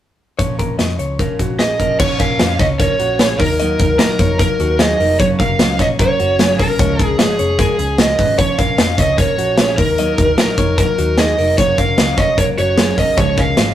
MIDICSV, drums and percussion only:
0, 0, Header, 1, 2, 480
1, 0, Start_track
1, 0, Tempo, 399734
1, 470, Time_signature, 4, 2, 24, 8
1, 16499, End_track
2, 0, Start_track
2, 0, Title_t, "Drums"
2, 469, Note_on_c, 9, 42, 75
2, 470, Note_on_c, 9, 36, 97
2, 589, Note_off_c, 9, 42, 0
2, 590, Note_off_c, 9, 36, 0
2, 711, Note_on_c, 9, 42, 55
2, 713, Note_on_c, 9, 36, 71
2, 831, Note_off_c, 9, 42, 0
2, 833, Note_off_c, 9, 36, 0
2, 948, Note_on_c, 9, 38, 82
2, 950, Note_on_c, 9, 42, 70
2, 1068, Note_off_c, 9, 38, 0
2, 1070, Note_off_c, 9, 42, 0
2, 1192, Note_on_c, 9, 42, 62
2, 1312, Note_off_c, 9, 42, 0
2, 1433, Note_on_c, 9, 36, 82
2, 1433, Note_on_c, 9, 42, 71
2, 1553, Note_off_c, 9, 36, 0
2, 1553, Note_off_c, 9, 42, 0
2, 1674, Note_on_c, 9, 36, 79
2, 1675, Note_on_c, 9, 42, 66
2, 1794, Note_off_c, 9, 36, 0
2, 1795, Note_off_c, 9, 42, 0
2, 1911, Note_on_c, 9, 38, 86
2, 1917, Note_on_c, 9, 42, 78
2, 2031, Note_off_c, 9, 38, 0
2, 2037, Note_off_c, 9, 42, 0
2, 2157, Note_on_c, 9, 36, 80
2, 2160, Note_on_c, 9, 42, 58
2, 2277, Note_off_c, 9, 36, 0
2, 2280, Note_off_c, 9, 42, 0
2, 2397, Note_on_c, 9, 49, 94
2, 2398, Note_on_c, 9, 36, 120
2, 2517, Note_off_c, 9, 49, 0
2, 2518, Note_off_c, 9, 36, 0
2, 2635, Note_on_c, 9, 42, 75
2, 2640, Note_on_c, 9, 36, 91
2, 2755, Note_off_c, 9, 42, 0
2, 2760, Note_off_c, 9, 36, 0
2, 2876, Note_on_c, 9, 38, 103
2, 2877, Note_on_c, 9, 42, 84
2, 2996, Note_off_c, 9, 38, 0
2, 2997, Note_off_c, 9, 42, 0
2, 3115, Note_on_c, 9, 36, 103
2, 3116, Note_on_c, 9, 42, 62
2, 3120, Note_on_c, 9, 38, 30
2, 3236, Note_off_c, 9, 36, 0
2, 3236, Note_off_c, 9, 42, 0
2, 3240, Note_off_c, 9, 38, 0
2, 3357, Note_on_c, 9, 36, 95
2, 3359, Note_on_c, 9, 42, 88
2, 3477, Note_off_c, 9, 36, 0
2, 3479, Note_off_c, 9, 42, 0
2, 3596, Note_on_c, 9, 42, 72
2, 3716, Note_off_c, 9, 42, 0
2, 3835, Note_on_c, 9, 38, 100
2, 3840, Note_on_c, 9, 42, 81
2, 3955, Note_off_c, 9, 38, 0
2, 3960, Note_off_c, 9, 42, 0
2, 4079, Note_on_c, 9, 36, 91
2, 4082, Note_on_c, 9, 46, 75
2, 4199, Note_off_c, 9, 36, 0
2, 4202, Note_off_c, 9, 46, 0
2, 4317, Note_on_c, 9, 42, 94
2, 4437, Note_off_c, 9, 42, 0
2, 4553, Note_on_c, 9, 42, 72
2, 4559, Note_on_c, 9, 36, 97
2, 4673, Note_off_c, 9, 42, 0
2, 4679, Note_off_c, 9, 36, 0
2, 4791, Note_on_c, 9, 38, 107
2, 4792, Note_on_c, 9, 42, 92
2, 4911, Note_off_c, 9, 38, 0
2, 4912, Note_off_c, 9, 42, 0
2, 5034, Note_on_c, 9, 36, 103
2, 5034, Note_on_c, 9, 42, 72
2, 5154, Note_off_c, 9, 36, 0
2, 5154, Note_off_c, 9, 42, 0
2, 5276, Note_on_c, 9, 42, 88
2, 5277, Note_on_c, 9, 36, 94
2, 5396, Note_off_c, 9, 42, 0
2, 5397, Note_off_c, 9, 36, 0
2, 5520, Note_on_c, 9, 42, 73
2, 5640, Note_off_c, 9, 42, 0
2, 5754, Note_on_c, 9, 38, 99
2, 5759, Note_on_c, 9, 42, 88
2, 5874, Note_off_c, 9, 38, 0
2, 5879, Note_off_c, 9, 42, 0
2, 6005, Note_on_c, 9, 46, 73
2, 6125, Note_off_c, 9, 46, 0
2, 6240, Note_on_c, 9, 36, 102
2, 6241, Note_on_c, 9, 42, 91
2, 6360, Note_off_c, 9, 36, 0
2, 6361, Note_off_c, 9, 42, 0
2, 6480, Note_on_c, 9, 42, 71
2, 6481, Note_on_c, 9, 36, 92
2, 6600, Note_off_c, 9, 42, 0
2, 6601, Note_off_c, 9, 36, 0
2, 6716, Note_on_c, 9, 38, 105
2, 6718, Note_on_c, 9, 42, 87
2, 6836, Note_off_c, 9, 38, 0
2, 6838, Note_off_c, 9, 42, 0
2, 6955, Note_on_c, 9, 36, 89
2, 6958, Note_on_c, 9, 42, 68
2, 6962, Note_on_c, 9, 38, 33
2, 7075, Note_off_c, 9, 36, 0
2, 7078, Note_off_c, 9, 42, 0
2, 7082, Note_off_c, 9, 38, 0
2, 7197, Note_on_c, 9, 36, 102
2, 7200, Note_on_c, 9, 42, 90
2, 7317, Note_off_c, 9, 36, 0
2, 7320, Note_off_c, 9, 42, 0
2, 7441, Note_on_c, 9, 42, 71
2, 7561, Note_off_c, 9, 42, 0
2, 7677, Note_on_c, 9, 38, 97
2, 7682, Note_on_c, 9, 42, 84
2, 7797, Note_off_c, 9, 38, 0
2, 7802, Note_off_c, 9, 42, 0
2, 7919, Note_on_c, 9, 36, 90
2, 7923, Note_on_c, 9, 46, 69
2, 8039, Note_off_c, 9, 36, 0
2, 8043, Note_off_c, 9, 46, 0
2, 8157, Note_on_c, 9, 36, 118
2, 8157, Note_on_c, 9, 42, 95
2, 8277, Note_off_c, 9, 36, 0
2, 8277, Note_off_c, 9, 42, 0
2, 8396, Note_on_c, 9, 42, 71
2, 8398, Note_on_c, 9, 36, 99
2, 8516, Note_off_c, 9, 42, 0
2, 8518, Note_off_c, 9, 36, 0
2, 8632, Note_on_c, 9, 38, 101
2, 8634, Note_on_c, 9, 42, 86
2, 8752, Note_off_c, 9, 38, 0
2, 8754, Note_off_c, 9, 42, 0
2, 8873, Note_on_c, 9, 42, 63
2, 8994, Note_off_c, 9, 42, 0
2, 9112, Note_on_c, 9, 36, 102
2, 9112, Note_on_c, 9, 42, 93
2, 9232, Note_off_c, 9, 36, 0
2, 9233, Note_off_c, 9, 42, 0
2, 9353, Note_on_c, 9, 42, 69
2, 9473, Note_off_c, 9, 42, 0
2, 9587, Note_on_c, 9, 38, 110
2, 9593, Note_on_c, 9, 42, 85
2, 9707, Note_off_c, 9, 38, 0
2, 9713, Note_off_c, 9, 42, 0
2, 9832, Note_on_c, 9, 36, 92
2, 9834, Note_on_c, 9, 46, 68
2, 9952, Note_off_c, 9, 36, 0
2, 9954, Note_off_c, 9, 46, 0
2, 10070, Note_on_c, 9, 36, 110
2, 10071, Note_on_c, 9, 42, 91
2, 10190, Note_off_c, 9, 36, 0
2, 10191, Note_off_c, 9, 42, 0
2, 10308, Note_on_c, 9, 42, 71
2, 10311, Note_on_c, 9, 36, 95
2, 10428, Note_off_c, 9, 42, 0
2, 10431, Note_off_c, 9, 36, 0
2, 10548, Note_on_c, 9, 38, 106
2, 10549, Note_on_c, 9, 42, 86
2, 10668, Note_off_c, 9, 38, 0
2, 10669, Note_off_c, 9, 42, 0
2, 10785, Note_on_c, 9, 36, 98
2, 10789, Note_on_c, 9, 42, 68
2, 10793, Note_on_c, 9, 38, 30
2, 10905, Note_off_c, 9, 36, 0
2, 10909, Note_off_c, 9, 42, 0
2, 10913, Note_off_c, 9, 38, 0
2, 11026, Note_on_c, 9, 36, 96
2, 11029, Note_on_c, 9, 42, 87
2, 11146, Note_off_c, 9, 36, 0
2, 11149, Note_off_c, 9, 42, 0
2, 11270, Note_on_c, 9, 42, 66
2, 11390, Note_off_c, 9, 42, 0
2, 11498, Note_on_c, 9, 38, 107
2, 11504, Note_on_c, 9, 42, 89
2, 11619, Note_off_c, 9, 38, 0
2, 11624, Note_off_c, 9, 42, 0
2, 11746, Note_on_c, 9, 36, 99
2, 11749, Note_on_c, 9, 46, 63
2, 11866, Note_off_c, 9, 36, 0
2, 11869, Note_off_c, 9, 46, 0
2, 11986, Note_on_c, 9, 42, 96
2, 12107, Note_off_c, 9, 42, 0
2, 12225, Note_on_c, 9, 42, 79
2, 12228, Note_on_c, 9, 36, 97
2, 12345, Note_off_c, 9, 42, 0
2, 12348, Note_off_c, 9, 36, 0
2, 12463, Note_on_c, 9, 38, 100
2, 12465, Note_on_c, 9, 42, 85
2, 12583, Note_off_c, 9, 38, 0
2, 12585, Note_off_c, 9, 42, 0
2, 12702, Note_on_c, 9, 36, 94
2, 12705, Note_on_c, 9, 42, 71
2, 12822, Note_off_c, 9, 36, 0
2, 12825, Note_off_c, 9, 42, 0
2, 12944, Note_on_c, 9, 36, 96
2, 12945, Note_on_c, 9, 42, 91
2, 13065, Note_off_c, 9, 36, 0
2, 13065, Note_off_c, 9, 42, 0
2, 13189, Note_on_c, 9, 42, 77
2, 13309, Note_off_c, 9, 42, 0
2, 13420, Note_on_c, 9, 38, 92
2, 13425, Note_on_c, 9, 42, 78
2, 13540, Note_off_c, 9, 38, 0
2, 13545, Note_off_c, 9, 42, 0
2, 13670, Note_on_c, 9, 46, 73
2, 13790, Note_off_c, 9, 46, 0
2, 13907, Note_on_c, 9, 36, 101
2, 13907, Note_on_c, 9, 42, 97
2, 14027, Note_off_c, 9, 36, 0
2, 14027, Note_off_c, 9, 42, 0
2, 14147, Note_on_c, 9, 42, 66
2, 14148, Note_on_c, 9, 36, 86
2, 14267, Note_off_c, 9, 42, 0
2, 14268, Note_off_c, 9, 36, 0
2, 14384, Note_on_c, 9, 38, 100
2, 14385, Note_on_c, 9, 42, 90
2, 14504, Note_off_c, 9, 38, 0
2, 14505, Note_off_c, 9, 42, 0
2, 14622, Note_on_c, 9, 36, 103
2, 14626, Note_on_c, 9, 42, 70
2, 14630, Note_on_c, 9, 38, 31
2, 14742, Note_off_c, 9, 36, 0
2, 14746, Note_off_c, 9, 42, 0
2, 14750, Note_off_c, 9, 38, 0
2, 14864, Note_on_c, 9, 36, 87
2, 14868, Note_on_c, 9, 42, 97
2, 14984, Note_off_c, 9, 36, 0
2, 14988, Note_off_c, 9, 42, 0
2, 15108, Note_on_c, 9, 42, 72
2, 15228, Note_off_c, 9, 42, 0
2, 15341, Note_on_c, 9, 38, 106
2, 15347, Note_on_c, 9, 42, 83
2, 15461, Note_off_c, 9, 38, 0
2, 15467, Note_off_c, 9, 42, 0
2, 15585, Note_on_c, 9, 36, 83
2, 15589, Note_on_c, 9, 46, 68
2, 15705, Note_off_c, 9, 36, 0
2, 15709, Note_off_c, 9, 46, 0
2, 15822, Note_on_c, 9, 36, 112
2, 15822, Note_on_c, 9, 42, 89
2, 15942, Note_off_c, 9, 36, 0
2, 15942, Note_off_c, 9, 42, 0
2, 16059, Note_on_c, 9, 42, 69
2, 16063, Note_on_c, 9, 36, 93
2, 16179, Note_off_c, 9, 42, 0
2, 16183, Note_off_c, 9, 36, 0
2, 16297, Note_on_c, 9, 38, 99
2, 16298, Note_on_c, 9, 42, 81
2, 16417, Note_off_c, 9, 38, 0
2, 16418, Note_off_c, 9, 42, 0
2, 16499, End_track
0, 0, End_of_file